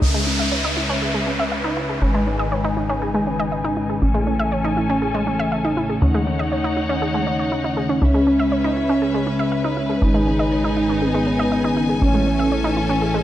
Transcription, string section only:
0.02 2.00 C#4 medium
0.02 3.98 B4 medium
0.02 2.00 E5 medium
2.02 4.00 D#4 medium
2.02 4.00 G#5 medium
4.02 6.00 C#4 medium
4.02 6.00 A4 medium
4.02 6.00 G#5 medium
6.02 8.00 D#4 medium
6.02 8.00 C#5 medium
6.02 8.00 F#5 medium
8.02 10.00 C#4 medium
8.02 11.98 B4 medium
8.02 10.00 E5 medium
10.02 12.00 D#4 medium
10.02 13.23 G#5 medium
12.02 13.23 C#4 medium
12.02 13.23 A4 medium

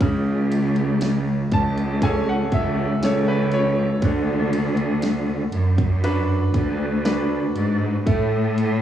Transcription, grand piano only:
0.02 4.00 C#3 medium
1.53 2.00 A5 medium
2.03 3.00 C#4 medium
2.03 3.00 G#4 medium
2.03 3.00 A4 medium
2.03 2.26 G#5 medium
2.29 2.52 F#5 medium
2.54 3.00 E5 medium
3.04 4.01 C#4 medium
3.04 4.01 G#4 soft
3.04 4.01 A4 medium
3.04 3.27 C#5 medium
3.28 3.51 B4 medium
3.54 4.00 C#5 medium
4.04 8.03 D3 medium
6.04 7.02 D4 medium
6.04 7.02 F#4 medium
6.04 7.02 B4 medium
7.05 8.04 D4 medium
7.05 8.04 F#4 soft
7.05 8.04 B4 medium
8.06 8.82 A3 medium

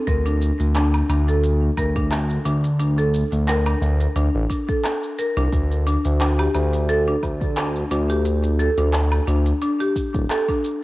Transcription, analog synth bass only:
0.07 0.51 D2 loud
0.60 1.02 D2 medium
1.09 1.70 D2 loud
1.78 2.39 D2 medium
2.46 3.24 D2 medium
3.32 3.75 D2 medium
3.82 4.07 D2 loud
4.16 4.29 D2 medium
4.34 4.46 A1 loud
5.37 5.48 C2 medium
5.52 5.97 D2 loud
6.05 6.48 D2 medium
6.55 7.16 D2 medium
7.23 7.84 D2 loud
7.91 8.69 D2 medium
8.78 9.20 D2 medium
9.28 9.53 D2 medium
10.14 10.25 D1 loud

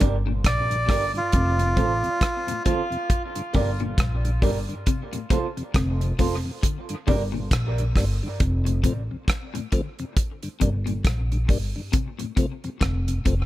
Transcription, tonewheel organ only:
0.00 0.09 D4 medium
0.25 0.32 G2 medium
0.25 0.32 D3 medium
0.70 0.76 G2 medium
0.70 0.76 D3 medium
0.88 0.97 G3 medium
0.88 0.97 A#3 medium
0.88 0.97 D4 medium
1.14 1.20 G2 medium
1.14 1.21 D3 medium
1.58 1.65 F2 medium
1.58 1.65 C3 medium
1.76 1.85 F3 medium
1.76 1.85 A3 medium
1.76 1.86 C4 medium
2.03 2.09 F2 medium
2.03 2.09 C3 medium
2.47 2.53 F2 medium
2.47 2.53 C3 medium
2.65 2.74 F3 medium
2.65 2.74 A3 medium
2.65 2.74 C4 medium
2.90 2.97 F2 medium
2.90 2.97 C3 medium
3.36 3.42 G2 medium
3.36 3.42 D3 medium
3.53 3.62 G3 medium
3.53 3.62 A#3 medium
3.53 3.63 D4 medium
3.80 3.86 G2 medium
3.80 3.86 D3 medium
4.25 4.31 G2 medium
4.25 4.31 D3 medium
4.42 4.51 G3 medium
4.42 4.51 A#3 medium
4.42 4.51 D4 medium
4.69 4.75 G2 medium
4.69 4.75 D3 medium
5.13 5.19 F2 medium
5.13 5.19 C3 medium
5.30 5.39 F3 medium
5.30 5.39 A3 medium
5.30 5.39 C4 medium
5.57 5.63 F2 medium
5.57 5.63 C3 medium
6.01 6.07 F2 medium
6.01 6.07 C3 medium
6.19 6.27 F3 medium
6.19 6.28 A3 medium
6.19 6.28 C4 medium
6.45 6.51 F2 medium
6.45 6.51 C3 medium
6.90 6.95 G2 medium
6.90 6.96 D3 medium
7.08 7.16 G3 medium
7.08 7.16 A#3 medium
7.08 7.16 D4 medium
7.34 7.40 G2 soft
7.34 7.40 D3 medium
7.79 7.84 G2 medium
7.79 7.84 D3 medium
7.96 8.05 G3 medium
7.96 8.05 A#3 medium
7.96 8.05 D4 medium
8.23 8.28 G2 medium
8.23 8.28 D3 medium
8.66 8.72 F2 medium
8.66 8.72 C3 medium
8.85 8.93 F3 medium
8.85 8.93 A3 medium
8.85 8.93 C4 medium
9.11 9.17 F2 medium
9.11 9.17 C3 medium
9.55 9.61 F2 medium
9.55 9.61 C3 medium
9.73 9.81 F3 medium
9.73 9.81 A3 medium
9.73 9.81 C4 medium
10.00 10.05 F2 medium
10.00 10.05 C3 medium
10.43 10.49 G2 medium
10.43 10.49 D3 medium
10.61 10.70 G3 medium
10.61 10.70 A#3 medium
10.61 10.70 D4 medium
10.88 10.93 G2 medium
10.88 10.93 D3 medium
11.32 11.37 G2 medium
11.32 11.37 D3 medium
11.50 11.58 G3 medium
11.50 11.58 A#3 medium
11.50 11.58 D4 medium
11.76 11.81 G2 medium
11.76 11.81 D3 medium
12.20 12.26 F2 medium
12.20 12.26 C3 medium
12.38 12.46 F3 medium
12.38 12.46 A3 medium
12.38 12.47 C4 medium
12.64 12.70 F2 medium
12.64 12.70 C3 medium
13.08 13.14 F2 medium
13.08 13.14 C3 medium
13.26 13.35 F3 medium
13.26 13.35 A3 medium
13.26 13.35 C4 medium

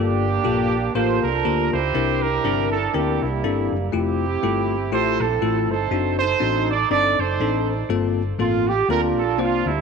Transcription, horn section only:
0.00 0.91 A#3 medium
0.00 0.91 D4 medium
0.00 0.91 G4 medium
0.95 1.22 F4 medium
0.95 1.91 A4 medium
0.95 1.23 C5 medium
1.23 1.90 D4 medium
1.23 1.91 F4 medium
1.23 1.69 A#4 medium
1.73 2.22 E4 medium
1.73 2.69 G4 medium
1.73 2.23 C5 loud
2.22 3.18 D4 medium
2.22 2.94 E4 medium
2.22 2.72 A#4 medium
2.72 2.92 A4 medium
2.95 3.21 A#3 medium
2.95 3.21 E4 medium
2.95 3.23 G4 medium
3.22 3.90 G3 medium
3.22 3.90 A#3 soft
3.22 3.72 E4 medium
3.94 4.89 C4 medium
3.94 4.89 E4 medium
3.94 4.89 G4 medium
4.93 5.20 E4 medium
4.93 5.20 A4 medium
4.93 5.21 C5 medium
5.21 5.88 C4 medium
5.21 5.88 E4 medium
5.21 5.70 A4 medium
5.71 6.19 D#4 medium
5.71 6.18 A4 medium
5.71 6.18 C5 medium
6.19 7.15 D#4 medium
6.19 6.90 A4 medium
6.19 6.66 C5 loud
6.70 6.91 D5 medium
6.92 7.17 A4 medium
6.92 7.17 D5 loud
7.19 7.86 D#4 medium
7.19 7.86 A4 medium
7.19 7.68 C5 medium
8.40 8.65 F4 medium
8.68 8.89 G4 loud
8.88 9.81 D4 medium
8.88 9.40 F4 medium
8.88 9.02 A#4 loud
9.19 9.38 A4 medium
9.41 9.67 F4 medium
9.66 9.81 G3 medium
9.66 9.81 A#3 medium
9.66 9.81 E4 medium

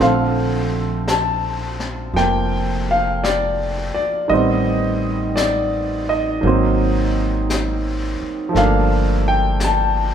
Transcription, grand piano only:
0.00 4.30 D3 soft
0.00 2.12 F3 soft
0.00 4.30 A3 soft
0.00 4.30 C4 medium
0.00 1.13 F5 medium
1.08 2.19 A5 medium
2.14 4.29 F3 soft
2.14 4.31 A#3 soft
2.14 2.86 G5 medium
2.91 3.26 F5 medium
3.24 3.93 D5 medium
3.94 4.27 D5 medium
4.28 6.40 D#3 soft
4.28 6.43 G3 soft
4.28 6.44 B3 soft
4.28 5.40 D#5 medium
4.34 6.45 C4 soft
5.36 6.11 D5 medium
6.09 8.17 D#5 medium
6.41 8.54 D#3 soft
6.41 8.55 F#3 soft
6.41 8.55 A#3 soft
6.47 8.57 C4 medium
8.49 10.14 F3 soft
8.53 10.14 A3 soft
8.53 10.14 A#3 soft
8.57 10.14 D4 medium
8.57 9.30 F5 medium
9.28 9.59 G5 medium
9.64 10.14 A5 medium

